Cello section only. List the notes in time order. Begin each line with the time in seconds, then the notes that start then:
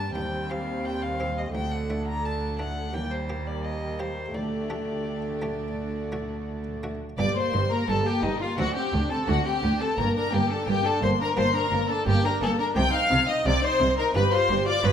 Already playing: G2
0.16 D#2
1.55 D2
2.94 D#2
4.35 D2
7.19 G2
7.53 G2
7.88 G2
8.23 G2
8.58 D2
8.93 D2
9.28 D2
9.63 D2
9.98 G2
10.33 G2
10.67 G2
11.02 G2
11.37 G2
11.72 G2
12.07 G2
12.41 G2
12.76 C3
13.11 C3
13.45 C3
13.80 C3
14.15 G2
14.49 G2
14.84 G2